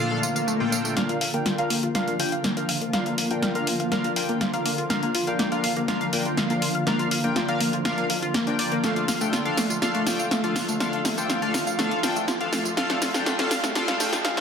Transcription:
Already playing: D3 F3 A#3 F4 F6
0.00 A#2 D4 F4 A4 F5, swell
0.11 A3
0.23 F4, tambourine
0.36 F5, tambourine
0.47 A3, tambourine
0.60 A#2 D4 F4 A4 G5
0.72 F5, tambourine
0.85 A3, tambourine
0.97 A#1 D3 F3 A#3 D4 F4 A#4 F5, snare, closed hi-hat
1.09 F4, closed hi-hat
1.21 F5, open hi-hat
1.34 A#1 A#3 D4 F4 A#4 G5, closed hi-hat
1.46 F4, snare, closed hi-hat
1.58 D4 F4 A#4 F5, closed hi-hat
1.70 A#3, open hi-hat
1.83 A#1 F4, closed hi-hat
1.95 D4 F4 A#4 F5, snare, closed hi-hat
2.08 A#3, closed hi-hat
2.20 F1 D4 F4 A#4 G5, open hi-hat
2.32 F5, closed hi-hat
2.44 A#3, snare, closed hi-hat
2.57 A#1 D4 F4 A#4 F5, closed hi-hat
2.69 F5, open hi-hat
2.81 A#3, closed hi-hat
2.93 A#1 D4 F4 A#4 F5, snare, closed hi-hat
3.06 F5, closed hi-hat
3.18 A#3, open hi-hat
3.31 A#1 D4 F4 A#4 G5, closed hi-hat
3.43 F5, snare, closed hi-hat
3.55 A#3 D4 F4 A#4 F5, closed hi-hat
3.67 F4, open hi-hat
3.80 D2 F5, closed hi-hat
3.92 A#3 D4 F4 A#4 F5, snare, closed hi-hat
4.04 F4, closed hi-hat
4.16 A#1 D4 F4 A#4 F5 G5, open hi-hat
4.29 A#3, closed hi-hat
4.41 F4, snare, closed hi-hat
4.54 F1 D4 F4 A#4 F5, closed hi-hat
4.66 A#3, open hi-hat
4.78 F4, closed hi-hat
4.90 A#1 D4 F4 A#4 F5, snare, closed hi-hat
5.03 A#3, closed hi-hat
5.15 F4, open hi-hat
5.27 A#1 D4 F4 A#4 F5 G5, closed hi-hat
5.39 A#3, snare, closed hi-hat
5.52 D4 F4 A#4 F5, closed hi-hat
5.64 F5, open hi-hat
5.76 A#1 A#3, closed hi-hat
5.88 D4 F4 A#4 F5, snare, closed hi-hat
6.01 F5, closed hi-hat
6.13 F1 A#3 D4 F4 A#4 G5, open hi-hat
6.25 F4, closed hi-hat
6.37 F5, snare, closed hi-hat
6.50 A#1 A#3 D4 F4 A#4 F5, closed hi-hat
6.62 F4, open hi-hat
6.75 F5, closed hi-hat
6.87 A#1 A#3 D4 F4 A#4 F5, snare, closed hi-hat
6.99 F4, closed hi-hat
7.11 F5, open hi-hat
7.24 A#1 A#3 D4 F4 A#4 G5, closed hi-hat
7.36 F4, snare, closed hi-hat
7.49 D4 F4 A#4 F5, closed hi-hat
7.60 A#3, open hi-hat
7.73 D2 F4, closed hi-hat
7.85 D4 F4 A#4 F5, snare, closed hi-hat
7.98 A#3, closed hi-hat
8.10 F2 F4, open hi-hat
8.22 F4, closed hi-hat
8.34 A#3, snare, closed hi-hat
8.47 A#1 D4 F4 A#4 G5, closed hi-hat
8.59 D5, open hi-hat
8.72 A#3, closed hi-hat
8.83 A#1 A3 D4 F4 A4 F5, snare, closed hi-hat, tambourine, riser
8.96 F4, closed hi-hat
9.08 F5, snare, open hi-hat, tambourine
9.21 A#1 A3 D4 F4 A4 G5, closed hi-hat, tambourine
9.33 F4, snare, closed hi-hat, tambourine
9.45 D4 F4 A4 F5, closed hi-hat
9.57 A3, snare, open hi-hat, tambourine
9.70 A#1 F4, closed hi-hat, tambourine
9.82 D4 F4 A4 F5, snare, closed hi-hat, tambourine
9.95 A3, closed hi-hat
10.06 D4 F4 A4 G5, snare, open hi-hat, tambourine
10.19 F5, closed hi-hat, tambourine
10.31 A3, snare, closed hi-hat, tambourine
10.44 A#1 D4 F4 A4 F5, closed hi-hat
10.56 F5, snare, open hi-hat, tambourine
10.68 A3, closed hi-hat, tambourine
10.80 A#1 D4 F4 A4 F5, snare, closed hi-hat, tambourine
10.93 F5, closed hi-hat
11.05 A3, snare, open hi-hat, tambourine
11.17 A#1 D4 F4 A4 G5, closed hi-hat, tambourine
11.30 F5, snare, closed hi-hat, tambourine
11.42 A3 D4 F4 A4 F5, closed hi-hat
11.54 F4, snare, open hi-hat, tambourine
11.67 D2 F5, closed hi-hat, tambourine
11.79 A3 D4 F4 A4 F5, snare, closed hi-hat, tambourine
11.91 F4, closed hi-hat
12.03 A#1 D4 F4 A4 F5 G5, snare, open hi-hat, tambourine
12.16 A3, closed hi-hat, tambourine
12.28 F4, snare, closed hi-hat, tambourine
12.40 A#1 D4 F4 A4 F5, closed hi-hat
12.53 A3, snare, open hi-hat, tambourine
12.65 F4, closed hi-hat, tambourine
12.77 A#1 D4 F4 A4 F5, snare, closed hi-hat, tambourine
12.90 A3, snare, closed hi-hat
13.02 F4, snare, open hi-hat, tambourine
13.14 A#1 D4 F4 A4 F5 G5, snare, closed hi-hat, tambourine
13.26 A3, snare, closed hi-hat, tambourine
13.39 D4 F4 A4 F5, snare, closed hi-hat
13.51 F5, snare, open hi-hat, tambourine
13.63 A#1 A3, snare, closed hi-hat, tambourine
13.75 D4 F4 A4 F5, snare, closed hi-hat, tambourine
13.88 F5, snare, closed hi-hat
14.00 A3 D4 F4 A4 G5, snare, open hi-hat, tambourine
14.13 F4, snare, tambourine
14.25 F5, snare, closed hi-hat, tambourine
14.37 A#1 A3 D4 F4 A4 F5, snare, closed hi-hat

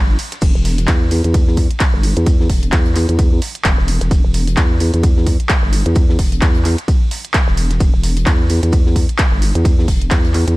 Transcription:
Already playing: G1
0.09 snare
0.19 open hi-hat, shaker
0.32 snare, closed hi-hat
0.42 E1, kick, closed hi-hat, crash, ride, shaker
0.55 E1
0.65 open hi-hat, shaker
0.78 closed hi-hat
0.88 E2, kick, snare, clap, closed hi-hat, ride, shaker
1.11 open hi-hat, shaker
1.24 E2, closed hi-hat
1.34 kick, closed hi-hat, ride, shaker
1.47 snare
1.57 kick, open hi-hat, shaker
1.71 closed hi-hat
1.80 kick, snare, clap, closed hi-hat, ride, shaker
1.94 G1
2.03 open hi-hat, shaker
2.17 E2, closed hi-hat
2.26 kick, closed hi-hat, ride, shaker
2.40 snare
2.50 E1, kick, open hi-hat
2.63 closed hi-hat
2.72 E2, kick, snare, clap, closed hi-hat, ride, shaker
2.86 closed hi-hat
2.95 clap, open hi-hat, shaker
3.09 E2, closed hi-hat
3.19 kick, closed hi-hat, ride, shaker
3.42 open hi-hat, shaker
3.55 closed hi-hat
3.65 E1, kick, snare, clap, closed hi-hat, ride, shaker
3.78 E1, snare
3.88 open hi-hat, shaker
4.01 E1, snare, closed hi-hat
4.11 E1, kick, closed hi-hat, ride, shaker
4.24 E1
4.34 open hi-hat, shaker
4.47 closed hi-hat
4.57 E2, kick, snare, clap, closed hi-hat, ride, shaker
4.80 open hi-hat, shaker
4.94 E2, closed hi-hat
5.03 kick, closed hi-hat, ride, shaker
5.17 snare
5.26 kick, open hi-hat, shaker
5.40 closed hi-hat
5.49 kick, snare, clap, closed hi-hat, ride, shaker
5.63 G1
5.73 open hi-hat, shaker
5.86 E2, closed hi-hat
5.96 kick, closed hi-hat, ride, shaker
6.09 snare
6.19 E1, kick, open hi-hat
6.32 closed hi-hat
6.42 E2, kick, snare, clap, closed hi-hat, ride, shaker
6.55 closed hi-hat
6.65 clap, open hi-hat, shaker
6.78 closed hi-hat
6.88 kick, closed hi-hat, ride, shaker
7.11 open hi-hat, shaker
7.25 closed hi-hat
7.34 kick, snare, clap, closed hi-hat, ride, shaker
7.47 E1, snare
7.57 open hi-hat, shaker
7.71 snare, closed hi-hat
7.80 E1, kick, closed hi-hat, ride, shaker
7.94 E1
8.03 open hi-hat, shaker
8.17 closed hi-hat
8.26 E2, kick, snare, clap, closed hi-hat, ride, shaker
8.50 open hi-hat, shaker
8.63 E2, closed hi-hat
8.73 kick, closed hi-hat, ride, shaker
8.86 snare
8.96 kick, open hi-hat, shaker
9.09 closed hi-hat
9.18 kick, snare, clap, closed hi-hat, ride, shaker
9.32 G1
9.42 open hi-hat, shaker
9.55 E2, closed hi-hat
9.65 kick, closed hi-hat, ride, shaker
9.79 snare
9.88 E1, kick, open hi-hat
10.01 closed hi-hat
10.11 E2, kick, snare, clap, closed hi-hat, ride, shaker
10.25 closed hi-hat
10.34 clap, open hi-hat, shaker
10.48 E2, closed hi-hat

